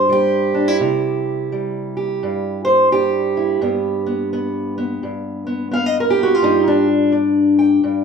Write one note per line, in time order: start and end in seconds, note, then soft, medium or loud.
0.00 0.81 G2 medium
0.00 0.79 C4 soft
0.00 0.11 C5 medium
0.09 1.52 G3 medium
0.09 1.95 G4 loud
0.54 0.68 D4 medium
0.68 0.79 E4 soft
0.80 2.21 C3 medium
0.80 3.36 E4 soft
1.52 2.93 G3 medium
1.97 2.64 G4 soft
2.23 3.60 G2 medium
2.65 2.91 C5 medium
2.92 3.62 G3 medium
2.92 5.02 G4 medium
3.37 3.59 E4 soft
3.61 5.03 G2 medium
3.61 4.06 B3 soft
4.06 4.33 B3 soft
4.33 4.77 B3 medium
4.78 5.46 B3 soft
5.03 6.42 G2 medium
5.47 5.71 B3 soft
5.71 6.43 B3 medium
5.71 5.86 F5 medium
5.86 5.95 D#5 medium
6.00 6.19 A#4 medium
6.10 6.86 G4 medium
6.23 6.35 F#4 medium
6.35 7.13 F4 medium
6.42 7.83 G2 medium
6.42 6.66 D#4 medium
6.68 7.11 D4 medium
7.12 8.04 D4 medium
7.59 8.04 G5 medium
7.84 8.04 G2 medium